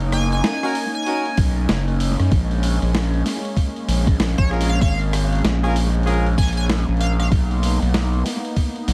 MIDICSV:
0, 0, Header, 1, 6, 480
1, 0, Start_track
1, 0, Tempo, 625000
1, 1779, Time_signature, 4, 2, 24, 8
1, 6860, End_track
2, 0, Start_track
2, 0, Title_t, "Analog synth lead"
2, 0, Program_c, 0, 81
2, 102, Note_on_c, 0, 80, 99
2, 218, Note_off_c, 0, 80, 0
2, 250, Note_on_c, 0, 80, 103
2, 699, Note_off_c, 0, 80, 0
2, 728, Note_on_c, 0, 80, 97
2, 1060, Note_off_c, 0, 80, 0
2, 3362, Note_on_c, 0, 73, 88
2, 3451, Note_off_c, 0, 73, 0
2, 3603, Note_on_c, 0, 77, 94
2, 3678, Note_off_c, 0, 77, 0
2, 3696, Note_on_c, 0, 77, 91
2, 3835, Note_off_c, 0, 77, 0
2, 4899, Note_on_c, 0, 80, 95
2, 4993, Note_off_c, 0, 80, 0
2, 5046, Note_on_c, 0, 80, 75
2, 5105, Note_off_c, 0, 80, 0
2, 5380, Note_on_c, 0, 77, 90
2, 5473, Note_off_c, 0, 77, 0
2, 5526, Note_on_c, 0, 77, 76
2, 5585, Note_off_c, 0, 77, 0
2, 6860, End_track
3, 0, Start_track
3, 0, Title_t, "Horn section"
3, 0, Program_c, 1, 61
3, 484, Note_on_c, 1, 61, 90
3, 484, Note_on_c, 1, 63, 82
3, 484, Note_on_c, 1, 70, 102
3, 485, Note_on_c, 1, 66, 80
3, 577, Note_off_c, 1, 61, 0
3, 577, Note_off_c, 1, 63, 0
3, 577, Note_off_c, 1, 66, 0
3, 577, Note_off_c, 1, 70, 0
3, 818, Note_on_c, 1, 61, 89
3, 818, Note_on_c, 1, 63, 83
3, 818, Note_on_c, 1, 66, 84
3, 819, Note_on_c, 1, 70, 94
3, 964, Note_off_c, 1, 61, 0
3, 964, Note_off_c, 1, 63, 0
3, 964, Note_off_c, 1, 66, 0
3, 965, Note_off_c, 1, 70, 0
3, 3460, Note_on_c, 1, 61, 79
3, 3460, Note_on_c, 1, 65, 74
3, 3460, Note_on_c, 1, 68, 74
3, 3460, Note_on_c, 1, 70, 91
3, 3605, Note_off_c, 1, 61, 0
3, 3605, Note_off_c, 1, 65, 0
3, 3605, Note_off_c, 1, 68, 0
3, 3605, Note_off_c, 1, 70, 0
3, 4325, Note_on_c, 1, 65, 88
3, 4325, Note_on_c, 1, 70, 100
3, 4326, Note_on_c, 1, 61, 87
3, 4326, Note_on_c, 1, 68, 86
3, 4417, Note_off_c, 1, 65, 0
3, 4417, Note_off_c, 1, 70, 0
3, 4418, Note_off_c, 1, 61, 0
3, 4418, Note_off_c, 1, 68, 0
3, 4656, Note_on_c, 1, 65, 88
3, 4656, Note_on_c, 1, 68, 86
3, 4657, Note_on_c, 1, 61, 91
3, 4657, Note_on_c, 1, 70, 98
3, 4803, Note_off_c, 1, 65, 0
3, 4803, Note_off_c, 1, 68, 0
3, 4804, Note_off_c, 1, 61, 0
3, 4804, Note_off_c, 1, 70, 0
3, 6860, End_track
4, 0, Start_track
4, 0, Title_t, "Analog synth pad"
4, 0, Program_c, 2, 89
4, 0, Note_on_c, 2, 58, 87
4, 0, Note_on_c, 2, 61, 75
4, 0, Note_on_c, 2, 63, 95
4, 1747, Note_off_c, 2, 58, 0
4, 1748, Note_off_c, 2, 63, 0
4, 1776, Note_on_c, 2, 56, 84
4, 1778, Note_on_c, 2, 58, 78
4, 5587, Note_off_c, 2, 56, 0
4, 5589, Note_off_c, 2, 61, 0
4, 5625, Note_on_c, 2, 59, 75
4, 5625, Note_on_c, 2, 63, 94
4, 6860, Note_off_c, 2, 58, 0
4, 6860, Note_off_c, 2, 59, 0
4, 6860, Note_off_c, 2, 63, 0
4, 6860, End_track
5, 0, Start_track
5, 0, Title_t, "Analog synth bass"
5, 0, Program_c, 3, 38
5, 0, Note_on_c, 3, 30, 95
5, 323, Note_off_c, 3, 30, 0
5, 1058, Note_on_c, 3, 35, 100
5, 1283, Note_off_c, 3, 35, 0
5, 1301, Note_on_c, 3, 30, 99
5, 1663, Note_off_c, 3, 30, 0
5, 1686, Note_on_c, 3, 42, 100
5, 1764, Note_off_c, 3, 42, 0
5, 1779, Note_on_c, 3, 34, 92
5, 2142, Note_off_c, 3, 34, 0
5, 2167, Note_on_c, 3, 34, 102
5, 2484, Note_off_c, 3, 34, 0
5, 2982, Note_on_c, 3, 34, 100
5, 3205, Note_off_c, 3, 34, 0
5, 3221, Note_on_c, 3, 34, 100
5, 3343, Note_off_c, 3, 34, 0
5, 3367, Note_on_c, 3, 34, 103
5, 3684, Note_off_c, 3, 34, 0
5, 3698, Note_on_c, 3, 32, 100
5, 4164, Note_off_c, 3, 32, 0
5, 4181, Note_on_c, 3, 34, 106
5, 4885, Note_off_c, 3, 34, 0
5, 4899, Note_on_c, 3, 34, 98
5, 5263, Note_off_c, 3, 34, 0
5, 5287, Note_on_c, 3, 34, 99
5, 5604, Note_off_c, 3, 34, 0
5, 5619, Note_on_c, 3, 35, 93
5, 5982, Note_off_c, 3, 35, 0
5, 6005, Note_on_c, 3, 35, 97
5, 6323, Note_off_c, 3, 35, 0
5, 6820, Note_on_c, 3, 35, 100
5, 6860, Note_off_c, 3, 35, 0
5, 6860, End_track
6, 0, Start_track
6, 0, Title_t, "Drums"
6, 4, Note_on_c, 9, 46, 21
6, 80, Note_off_c, 9, 46, 0
6, 96, Note_on_c, 9, 37, 54
6, 96, Note_on_c, 9, 46, 70
6, 172, Note_off_c, 9, 37, 0
6, 172, Note_off_c, 9, 46, 0
6, 246, Note_on_c, 9, 46, 30
6, 323, Note_off_c, 9, 46, 0
6, 337, Note_on_c, 9, 38, 119
6, 337, Note_on_c, 9, 46, 41
6, 414, Note_off_c, 9, 38, 0
6, 414, Note_off_c, 9, 46, 0
6, 485, Note_on_c, 9, 37, 37
6, 485, Note_on_c, 9, 46, 19
6, 562, Note_off_c, 9, 37, 0
6, 562, Note_off_c, 9, 46, 0
6, 576, Note_on_c, 9, 46, 74
6, 653, Note_off_c, 9, 46, 0
6, 725, Note_on_c, 9, 46, 13
6, 786, Note_off_c, 9, 46, 0
6, 786, Note_on_c, 9, 46, 18
6, 817, Note_off_c, 9, 46, 0
6, 817, Note_on_c, 9, 46, 42
6, 866, Note_off_c, 9, 46, 0
6, 866, Note_on_c, 9, 46, 26
6, 943, Note_off_c, 9, 46, 0
6, 964, Note_on_c, 9, 46, 21
6, 1041, Note_off_c, 9, 46, 0
6, 1056, Note_on_c, 9, 46, 75
6, 1058, Note_on_c, 9, 36, 113
6, 1132, Note_off_c, 9, 46, 0
6, 1134, Note_off_c, 9, 36, 0
6, 1298, Note_on_c, 9, 38, 123
6, 1298, Note_on_c, 9, 46, 38
6, 1375, Note_off_c, 9, 38, 0
6, 1375, Note_off_c, 9, 46, 0
6, 1445, Note_on_c, 9, 46, 21
6, 1522, Note_off_c, 9, 46, 0
6, 1537, Note_on_c, 9, 46, 72
6, 1614, Note_off_c, 9, 46, 0
6, 1686, Note_on_c, 9, 37, 36
6, 1686, Note_on_c, 9, 46, 32
6, 1762, Note_off_c, 9, 37, 0
6, 1762, Note_off_c, 9, 46, 0
6, 1778, Note_on_c, 9, 36, 119
6, 1778, Note_on_c, 9, 46, 43
6, 1855, Note_off_c, 9, 36, 0
6, 1855, Note_off_c, 9, 46, 0
6, 1927, Note_on_c, 9, 46, 23
6, 2004, Note_off_c, 9, 46, 0
6, 2019, Note_on_c, 9, 46, 75
6, 2096, Note_off_c, 9, 46, 0
6, 2167, Note_on_c, 9, 46, 32
6, 2244, Note_off_c, 9, 46, 0
6, 2262, Note_on_c, 9, 38, 114
6, 2262, Note_on_c, 9, 46, 42
6, 2339, Note_off_c, 9, 38, 0
6, 2339, Note_off_c, 9, 46, 0
6, 2409, Note_on_c, 9, 46, 21
6, 2486, Note_off_c, 9, 46, 0
6, 2503, Note_on_c, 9, 38, 35
6, 2503, Note_on_c, 9, 46, 70
6, 2580, Note_off_c, 9, 38, 0
6, 2580, Note_off_c, 9, 46, 0
6, 2650, Note_on_c, 9, 46, 33
6, 2727, Note_off_c, 9, 46, 0
6, 2739, Note_on_c, 9, 36, 62
6, 2743, Note_on_c, 9, 46, 44
6, 2816, Note_off_c, 9, 36, 0
6, 2820, Note_off_c, 9, 46, 0
6, 2891, Note_on_c, 9, 46, 21
6, 2968, Note_off_c, 9, 46, 0
6, 2984, Note_on_c, 9, 46, 79
6, 3061, Note_off_c, 9, 46, 0
6, 3126, Note_on_c, 9, 36, 106
6, 3132, Note_on_c, 9, 46, 33
6, 3203, Note_off_c, 9, 36, 0
6, 3209, Note_off_c, 9, 46, 0
6, 3224, Note_on_c, 9, 38, 112
6, 3224, Note_on_c, 9, 46, 43
6, 3300, Note_off_c, 9, 38, 0
6, 3300, Note_off_c, 9, 46, 0
6, 3366, Note_on_c, 9, 36, 104
6, 3371, Note_on_c, 9, 46, 21
6, 3443, Note_off_c, 9, 36, 0
6, 3447, Note_off_c, 9, 46, 0
6, 3464, Note_on_c, 9, 37, 40
6, 3538, Note_on_c, 9, 46, 73
6, 3541, Note_off_c, 9, 37, 0
6, 3609, Note_off_c, 9, 46, 0
6, 3609, Note_on_c, 9, 46, 32
6, 3686, Note_off_c, 9, 46, 0
6, 3698, Note_on_c, 9, 36, 112
6, 3703, Note_on_c, 9, 46, 44
6, 3775, Note_off_c, 9, 36, 0
6, 3780, Note_off_c, 9, 46, 0
6, 3848, Note_on_c, 9, 46, 23
6, 3925, Note_off_c, 9, 46, 0
6, 3942, Note_on_c, 9, 37, 55
6, 3942, Note_on_c, 9, 46, 84
6, 4019, Note_off_c, 9, 37, 0
6, 4019, Note_off_c, 9, 46, 0
6, 4090, Note_on_c, 9, 46, 31
6, 4111, Note_off_c, 9, 46, 0
6, 4111, Note_on_c, 9, 46, 26
6, 4135, Note_off_c, 9, 46, 0
6, 4135, Note_on_c, 9, 46, 22
6, 4160, Note_off_c, 9, 46, 0
6, 4160, Note_on_c, 9, 46, 17
6, 4183, Note_off_c, 9, 46, 0
6, 4183, Note_on_c, 9, 38, 114
6, 4183, Note_on_c, 9, 46, 44
6, 4219, Note_off_c, 9, 46, 0
6, 4219, Note_on_c, 9, 46, 12
6, 4256, Note_off_c, 9, 46, 0
6, 4256, Note_on_c, 9, 46, 10
6, 4259, Note_off_c, 9, 38, 0
6, 4294, Note_off_c, 9, 46, 0
6, 4294, Note_on_c, 9, 46, 8
6, 4331, Note_off_c, 9, 46, 0
6, 4331, Note_on_c, 9, 37, 37
6, 4331, Note_on_c, 9, 46, 21
6, 4407, Note_off_c, 9, 37, 0
6, 4407, Note_off_c, 9, 46, 0
6, 4423, Note_on_c, 9, 46, 75
6, 4500, Note_off_c, 9, 46, 0
6, 4570, Note_on_c, 9, 46, 15
6, 4632, Note_off_c, 9, 46, 0
6, 4632, Note_on_c, 9, 46, 20
6, 4663, Note_off_c, 9, 46, 0
6, 4663, Note_on_c, 9, 46, 47
6, 4712, Note_off_c, 9, 46, 0
6, 4712, Note_on_c, 9, 46, 27
6, 4789, Note_off_c, 9, 46, 0
6, 4810, Note_on_c, 9, 46, 21
6, 4886, Note_off_c, 9, 46, 0
6, 4899, Note_on_c, 9, 36, 106
6, 4903, Note_on_c, 9, 46, 73
6, 4939, Note_off_c, 9, 46, 0
6, 4939, Note_on_c, 9, 46, 58
6, 4975, Note_off_c, 9, 36, 0
6, 4978, Note_off_c, 9, 46, 0
6, 4978, Note_on_c, 9, 46, 51
6, 5012, Note_off_c, 9, 46, 0
6, 5012, Note_on_c, 9, 46, 41
6, 5050, Note_off_c, 9, 46, 0
6, 5050, Note_on_c, 9, 46, 33
6, 5073, Note_off_c, 9, 46, 0
6, 5073, Note_on_c, 9, 46, 27
6, 5097, Note_off_c, 9, 46, 0
6, 5097, Note_on_c, 9, 46, 22
6, 5119, Note_off_c, 9, 46, 0
6, 5119, Note_on_c, 9, 46, 19
6, 5142, Note_off_c, 9, 46, 0
6, 5142, Note_on_c, 9, 38, 115
6, 5142, Note_on_c, 9, 46, 44
6, 5219, Note_off_c, 9, 38, 0
6, 5219, Note_off_c, 9, 46, 0
6, 5289, Note_on_c, 9, 46, 10
6, 5352, Note_off_c, 9, 46, 0
6, 5352, Note_on_c, 9, 46, 13
6, 5381, Note_off_c, 9, 46, 0
6, 5381, Note_on_c, 9, 46, 76
6, 5431, Note_off_c, 9, 46, 0
6, 5431, Note_on_c, 9, 46, 18
6, 5508, Note_off_c, 9, 46, 0
6, 5527, Note_on_c, 9, 37, 37
6, 5527, Note_on_c, 9, 46, 33
6, 5603, Note_off_c, 9, 37, 0
6, 5603, Note_off_c, 9, 46, 0
6, 5619, Note_on_c, 9, 36, 113
6, 5620, Note_on_c, 9, 46, 47
6, 5695, Note_off_c, 9, 36, 0
6, 5697, Note_off_c, 9, 46, 0
6, 5768, Note_on_c, 9, 46, 22
6, 5845, Note_off_c, 9, 46, 0
6, 5860, Note_on_c, 9, 46, 79
6, 5937, Note_off_c, 9, 46, 0
6, 6008, Note_on_c, 9, 46, 35
6, 6085, Note_off_c, 9, 46, 0
6, 6099, Note_on_c, 9, 38, 111
6, 6099, Note_on_c, 9, 46, 46
6, 6176, Note_off_c, 9, 38, 0
6, 6176, Note_off_c, 9, 46, 0
6, 6247, Note_on_c, 9, 46, 22
6, 6324, Note_off_c, 9, 46, 0
6, 6341, Note_on_c, 9, 38, 34
6, 6341, Note_on_c, 9, 46, 81
6, 6418, Note_off_c, 9, 38, 0
6, 6418, Note_off_c, 9, 46, 0
6, 6487, Note_on_c, 9, 46, 34
6, 6564, Note_off_c, 9, 46, 0
6, 6578, Note_on_c, 9, 36, 60
6, 6579, Note_on_c, 9, 46, 46
6, 6654, Note_off_c, 9, 36, 0
6, 6655, Note_off_c, 9, 46, 0
6, 6726, Note_on_c, 9, 46, 21
6, 6803, Note_off_c, 9, 46, 0
6, 6820, Note_on_c, 9, 46, 79
6, 6860, Note_off_c, 9, 46, 0
6, 6860, End_track
0, 0, End_of_file